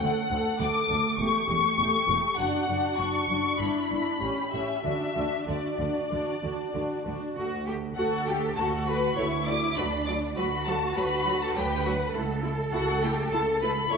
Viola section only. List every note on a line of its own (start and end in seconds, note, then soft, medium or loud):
0.01 0.29 A3 medium
0.01 0.29 A4 medium
0.30 0.59 A3 medium
0.30 0.59 A4 medium
0.60 0.89 A3 soft
0.60 0.88 A4 medium
0.90 1.19 A3 soft
0.90 1.19 A4 soft
1.20 1.48 A3 medium
1.20 1.48 G4 medium
1.49 1.78 A3 soft
1.49 1.78 G4 medium
1.79 2.08 A3 medium
1.79 2.08 G4 medium
2.09 2.38 A3 medium
2.09 2.38 G4 medium
2.38 2.67 D4 medium
2.38 2.68 F#4 medium
2.69 2.98 D4 medium
2.69 2.98 F#4 medium
2.99 3.28 D4 medium
2.99 3.28 F#4 medium
3.29 3.59 D4 soft
3.29 3.60 F#4 soft
3.60 3.90 D4 medium
3.60 3.90 E4 medium
3.91 4.21 D4 soft
3.91 4.21 E4 soft
4.22 4.51 C#4 soft
4.22 4.51 G4 soft
4.52 4.84 C#4 soft
4.52 4.84 G4 soft
4.84 5.15 D4 soft
4.84 5.15 F#4 soft
5.16 5.46 D4 soft
5.16 5.46 F#4 soft
5.47 5.78 D4 soft
5.47 5.78 F#4 soft
5.79 6.10 D4 soft
5.79 6.10 F#4 soft
6.11 6.42 D4 medium
6.11 6.42 F#4 soft
6.43 6.73 D4 soft
6.43 6.73 F#4 soft
6.74 7.04 D4 soft
6.74 7.04 F#4 soft
7.05 7.36 D4 soft
7.05 7.36 F#4 soft
7.37 7.45 A3 medium
7.37 7.45 F#4 medium
7.67 7.75 A3 soft
7.67 7.75 F#4 medium
7.97 8.05 A3 soft
7.97 8.05 F#4 medium
8.28 8.36 A3 soft
8.28 8.36 F#4 medium
8.58 8.66 A3 medium
8.58 8.66 F#4 medium
8.88 8.96 A3 soft
8.88 8.97 F#4 soft
9.18 9.26 A3 medium
9.18 9.26 F#4 medium
9.48 9.56 A3 medium
9.48 9.56 F#4 soft
9.77 9.85 F#3 medium
9.77 9.86 F#4 medium
10.08 10.16 F#3 medium
10.08 10.16 F#4 medium
10.38 10.46 F#3 medium
10.38 10.46 F#4 medium
10.67 10.75 F#3 soft
10.67 10.75 F#4 soft
10.96 11.04 F#3 medium
10.96 11.04 F#4 medium
11.26 11.34 F#3 medium
11.26 11.34 F#4 soft
11.56 11.64 F#3 medium
11.56 11.64 F#4 medium
11.85 11.93 F#3 medium
11.85 11.94 F#4 medium
12.14 12.22 A3 medium
12.14 12.23 E4 medium
12.44 12.52 A3 medium
12.44 12.52 E4 medium
12.73 12.81 A3 soft
12.73 12.81 E4 medium
13.03 13.11 A3 soft
13.03 13.11 E4 medium
13.32 13.40 A3 medium
13.32 13.40 E4 medium
13.62 13.70 A3 medium
13.62 13.70 E4 medium
13.91 13.97 A3 medium
13.91 13.97 E4 medium